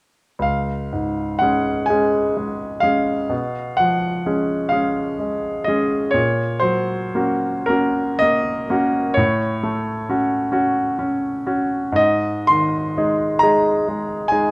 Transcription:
grand piano
0.39 C#2 F5
0.93 G#2
1.39 G#3 C#4 F#5
1.43 G#4
1.86 G#3 G#5
1.90 C#4 G#4
2.37 G#3
2.80 G#3 C#4 G#4 F5
3.30 B2
3.77 F3 F#5
4.26 G#3 C#4 G#4
4.69 G#3 C#4 G#4 F5
5.19 G#3
5.64 G#3 C#4 G#4 D#5
6.11 A#2 C#5
6.60 F#3 C5
7.15 A#3 C#4 F#4
7.66 A#3 C#4 F#4 A#4
8.19 A#3 D#5
8.70 A#3 C#4 F#4
9.14 A2 C#5
9.63 A3
10.09 C#4 F#4
10.52 C#4 F#4
10.99 C#4
11.46 C#4 F#4
11.92 G#2 D#5
12.47 D#3 C6
12.97 G#3 D#4 G#4
13.39 G#3 G#4 A#5
13.43 D#4
13.88 G#3
14.28 G#3 D#4 G#4 G#5

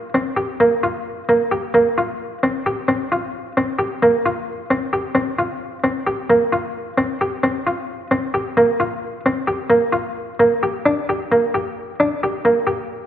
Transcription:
harpsichord
0.14 C4
0.37 G4
0.60 A#3
0.83 F4
1.29 A#3
1.52 G4
1.74 A#3
1.98 F4
2.43 C4
2.66 G4
2.88 C4
3.12 F4
3.57 C4
3.79 G4
4.03 A#3
4.26 F4
4.71 C4
4.93 G4
5.15 C4
5.39 F4
5.84 C4
6.07 G4
6.30 A#3
6.53 F4
6.98 C4
7.21 G4
7.43 C4
7.67 F4
8.11 C4
8.34 G4
8.57 A#3
8.80 F4
9.26 C4
9.48 G4
9.70 A#3
9.93 F4
10.40 A#3
10.63 G4
10.86 D4
11.09 G4
11.32 A#3
11.54 G4
12.00 D4
12.23 G4
12.45 A#3
12.67 G4

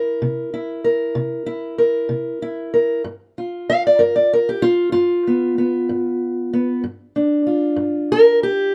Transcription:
steel-string acoustic guitar
Already playing: E4 A#4
0.22 C3
0.54 E4
0.84 A#4
1.15 C3
1.46 E4
1.78 A#4
2.09 C3
2.42 E4
2.74 A#4
3.04 G2
3.38 F4
3.70 F5
3.87 D5
3.99 G2 A#4
4.16 D5
4.33 A#4
4.49 G4
4.62 F4
4.92 G2 F4
5.27 B3
5.58 B3
5.89 G2
6.53 B3
6.84 G2
7.16 D4
7.47 F4
7.76 G2
8.12 A#4
8.43 G4

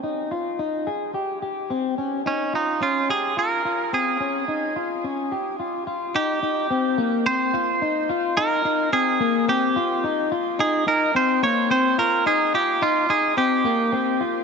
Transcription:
clean electric guitar
0.03 D#4
0.31 F4
0.59 D#4
0.87 G#4
1.14 G4
1.42 G4
1.70 C4
1.98 C#4
2.26 C#4 D#4
2.53 D#4 F4
2.81 C#4 F4
3.09 G4 G#4
3.37 F4 A#4
3.65 F4
3.93 C4 G#4
4.20 C#4
4.48 D#4
4.76 F4
5.04 C#4
5.32 G4
5.60 F4
5.87 F4
6.15 D#4 G4
6.43 D#4
6.70 C4
6.98 A#3
7.26 C4 C5
7.54 F4
7.82 D#4
8.09 F4
8.37 D#4 A#4
8.65 D#4
8.93 C4 G#4
9.20 A#3
9.48 C4 G4
9.76 F4
10.04 D#4
10.32 F4
10.59 D#4 G#4
10.87 D#4 A#4
11.15 C4 C5
11.43 A#3 C#5
11.70 C4 C5
11.98 F4 A#4
12.26 D#4 G#4
12.54 F4 G4
12.82 D#4 F4
13.10 D#4 G#4
13.37 C4 G4
13.65 A#3
13.92 C4
14.21 F4

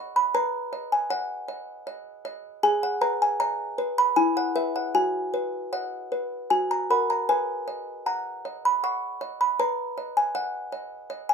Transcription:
music box
Already playing: B4 D#5 F#5 C#6
0.16 B5
0.35 B4 A#5
0.73 D#5
0.92 G#5
1.10 D#5 F#5
1.48 D#5
1.87 D#5
2.25 D#5
2.63 G#4 G#5
2.83 F#5
3.01 B4 A#5
3.22 G#5
3.40 D#5 A#5
3.78 B4
3.98 B5
4.16 E4 G#5
4.37 F#5
4.56 B4 E5
4.76 F#5
4.95 F#4 G#5
5.34 B4
5.73 D#5 F#5
6.12 B4
6.50 F#4 G#5
6.71 A#5
6.90 A#4 F#5 B5
7.10 A#5
7.29 B4 G#5
7.68 D#5
8.06 F#5 A#5
8.45 D#5
8.65 B5
8.84 F#5 C#6
9.21 D#5
9.41 B5
9.59 B4 A#5
9.98 D#5
10.17 G#5
10.35 D#5 F#5
10.72 D#5
11.10 D#5
11.29 G#5

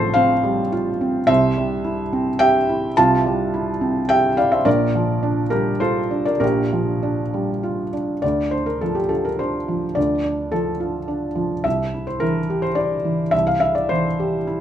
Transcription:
felt piano
Already playing: A1 A2 F3 A4 C5
0.14 C4 C5 F5
0.44 G3
0.72 F4
1.01 C4
1.27 C2 C3 C5 E5
1.57 G3
1.84 E4
2.13 C4
2.39 G4 E5 G5
2.69 E4
2.97 C2 C3 F4 A5
3.26 G3
3.54 E4
3.81 C4
4.09 G4 E5 G5
4.37 E4 D5 F5
4.52 C5 E5
4.65 A#1 A#2 A#4 D5
4.95 F3
5.23 D4
5.50 G3 G4 A#4
5.80 F4 A4 C5
6.11 D4
6.25 A#4 D5
6.40 A#1 A#2 G4 A#4
6.73 F3
7.03 D4
7.34 G3
7.63 F4
7.93 D4
8.22 D2 D5
8.51 D4 C5
8.66 A#4
8.81 F3 A4
8.95 G4
9.09 F4 A4
9.25 A#4
9.39 D4 C5
9.68 F3
9.95 D2 D5
10.24 D4
10.52 F3 A4
10.80 F4
11.08 D4
11.35 F3
11.64 C2 E5
11.94 E4
12.07 C5
12.20 E3 A#4
12.50 G4
12.62 C5
12.75 E4 D5
13.05 E3
13.31 C2 E5
13.47 F5
13.60 E4 E5
13.75 D5
13.89 E3 C5
14.20 G4
14.47 E4

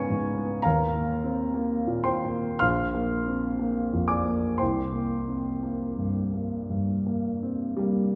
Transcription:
grand piano
Already playing: G#2 B3 C#4 A#4 B4 C#5 F5 G5 G#5 A#5 B5 C#6
0.10 G#2
0.38 B3
0.62 D#2 A#4 F5 A#5
0.94 A#3
1.24 C4
1.54 A#3
1.87 A#2
2.04 C5 G5 C6
2.25 A#3
2.59 A#1 F5 C6 F6
2.94 A#3
3.26 C4
3.59 A#3
3.93 F2
4.08 D5 G#5 D6
4.26 A#3
4.58 C2 C5 G5 C6
4.93 A#3
5.28 C4
5.63 A#3
5.98 G2
6.33 A#3
6.70 G2
7.06 A#3
7.43 C4
7.77 G3 A#3

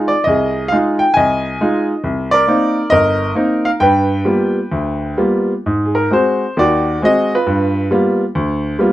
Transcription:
grand piano
Already playing: G#3 D#4 F4 G#4
0.08 D5
0.24 C2 G#4 D#5
0.68 G#3 D#4 F5
0.73 F4
0.99 G5
1.14 C2 D#5 G#5
1.61 G#3 D#4 F4
2.04 C2
2.31 A#4 D5
2.48 A#3 C4 D#4
2.90 G1 A#4 D#5
3.35 A#3 C4 D#4
3.65 F5
3.80 G2 B4 G5
4.25 G3 A#3 B3 F4
4.72 D2
5.17 G3 A#3 B3 F4
5.66 G#2
5.86 G#4
5.95 A#4
6.11 G#3 C4 F#4 C5
6.57 D#2 D#3 F#4 D5
7.02 G#3 C4 F#4 D#5
7.34 F4 B4
7.46 G2
7.91 G3 A#3 B3 F4
8.35 D2
8.79 G3 A#3 B3 F4

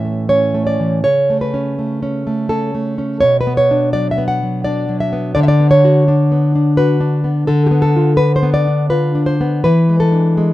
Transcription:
nylon-string guitar
Already playing: A2 E3 C#4 E5
0.05 A3
0.29 C#4 C#5
0.54 A3
0.67 D5
0.80 E3
1.04 C#3 C#5
1.30 A3
1.41 B4
1.54 C#4
1.79 A3
2.03 C#4
2.27 A3
2.49 C#4 A4
2.75 A3
2.98 C#4
3.21 B2 C#5
3.41 B4
3.47 B3
3.57 C#5
3.71 D4
3.93 F#3 D5
4.11 E5
4.18 B3
4.28 F#5
4.43 F#3
4.64 D4 D5
4.89 F#3
5.00 E5
5.13 B3
5.35 D3 D5
5.43 E5
5.48 D5
5.60 B3
5.71 C#5
5.85 F#4
6.08 D4
6.32 B3
6.55 D4
6.77 F#4 B4
7.00 D4
7.24 B3
7.47 D3 A4
7.66 G4
7.71 B3
7.82 A4
7.96 F4
8.17 D4 B4
8.36 C5
8.43 B3
8.54 D5
8.67 D4
8.90 F4 B4
9.15 D4
9.26 C5
9.41 B3
9.64 E3 B4
9.89 G#3
10.00 A4
10.12 D4
10.37 G#3

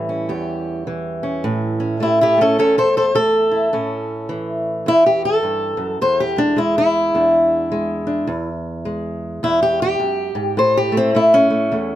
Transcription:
steel-string acoustic guitar
Already playing: A2 E3 G3
0.09 C#4
0.29 E2 G4
0.87 E3
1.23 C#4
1.44 A2
1.80 C#4
2.00 A3 E4 G4
2.21 E4 G4
2.37 A3 C#4
2.42 A4
2.59 E2 C#4 A4
2.78 A4 C5
2.97 A4 C5
3.15 A3 A4
3.51 E4
3.73 A2 C#4
4.29 E3
4.86 E2 E4
5.06 G4
5.25 A4
5.43 G2
5.77 F#2
6.01 E2 C5
6.20 G4
6.36 G#3 D4
6.56 G#3 E4
6.78 E4
7.15 E2 D4
7.72 G#3
8.07 D4
8.27 E2
8.85 G#3
9.43 E2 E4
9.63 G4
9.82 G4
10.00 F#2
10.35 G#2
10.57 A2 C5
10.77 G4
10.92 A3
10.97 C4
11.15 A3 E4
11.34 C#4
11.50 A3
11.72 E2 A3

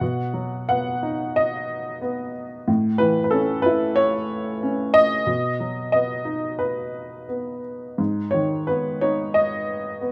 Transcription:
upright piano
Already playing: F#5
0.01 B2
0.34 F#3
0.69 B3 F#5
1.03 D#4
1.36 D#5
2.01 B3
2.68 A2
2.98 E3 B4
3.24 B4
3.31 C#4 A4
3.62 E4 B4
3.96 C#5
4.63 C#4
4.94 D#5
5.27 B2
5.60 F#3
5.92 B3 D#5
6.25 D#4
6.59 B4
7.29 B3
7.98 G#2
8.31 D#3 C#5
8.67 B3 B4
9.01 D#4 C#5
9.34 D#5
10.01 B3

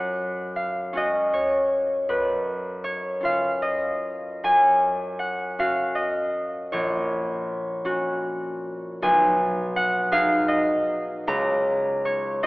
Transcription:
harp
Already playing: F#2 C#4 C#5 F#5
0.56 F5
0.93 C#4 F#4
0.97 D#5
1.33 C#5
2.09 F#2 B4
2.84 C#5
3.20 C#4 F4
3.25 F5
3.62 D#5
4.43 F#2 G#5
5.19 F#5
5.59 C#4 F#4 F5
5.95 D#5
6.72 A#1 C#5
7.85 C#4 F#4
9.02 B1 G#5
9.76 F#5
10.12 D#4 G#4 F5
10.48 D#5
11.27 C#2 A#5
12.05 C#5
12.43 C#4 F4 D#5

